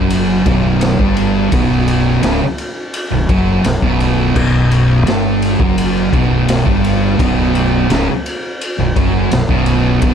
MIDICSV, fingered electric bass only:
0, 0, Header, 1, 2, 480
1, 0, Start_track
1, 0, Tempo, 708383
1, 1033, Time_signature, 4, 2, 24, 8
1, 6871, End_track
2, 0, Start_track
2, 0, Title_t, "Fingered electric bass"
2, 0, Program_c, 0, 33
2, 0, Note_on_c, 0, 30, 100
2, 288, Note_off_c, 0, 30, 0
2, 312, Note_on_c, 0, 23, 100
2, 648, Note_off_c, 0, 23, 0
2, 672, Note_on_c, 0, 31, 94
2, 1007, Note_off_c, 0, 31, 0
2, 1033, Note_on_c, 0, 23, 100
2, 1486, Note_off_c, 0, 23, 0
2, 1512, Note_on_c, 0, 25, 97
2, 1624, Note_off_c, 0, 25, 0
2, 2115, Note_on_c, 0, 23, 78
2, 2225, Note_off_c, 0, 23, 0
2, 2231, Note_on_c, 0, 30, 102
2, 2454, Note_off_c, 0, 30, 0
2, 2471, Note_on_c, 0, 23, 78
2, 2583, Note_off_c, 0, 23, 0
2, 2590, Note_on_c, 0, 23, 88
2, 2925, Note_off_c, 0, 23, 0
2, 2950, Note_on_c, 0, 23, 101
2, 3403, Note_off_c, 0, 23, 0
2, 3792, Note_on_c, 0, 30, 104
2, 4126, Note_off_c, 0, 30, 0
2, 4153, Note_on_c, 0, 23, 96
2, 4487, Note_off_c, 0, 23, 0
2, 4511, Note_on_c, 0, 31, 86
2, 4846, Note_off_c, 0, 31, 0
2, 4874, Note_on_c, 0, 23, 92
2, 5325, Note_off_c, 0, 23, 0
2, 5354, Note_on_c, 0, 25, 98
2, 5464, Note_off_c, 0, 25, 0
2, 5955, Note_on_c, 0, 23, 80
2, 6065, Note_off_c, 0, 23, 0
2, 6074, Note_on_c, 0, 30, 106
2, 6296, Note_off_c, 0, 30, 0
2, 6315, Note_on_c, 0, 23, 80
2, 6425, Note_off_c, 0, 23, 0
2, 6430, Note_on_c, 0, 23, 90
2, 6766, Note_off_c, 0, 23, 0
2, 6791, Note_on_c, 0, 23, 102
2, 6871, Note_off_c, 0, 23, 0
2, 6871, End_track
0, 0, End_of_file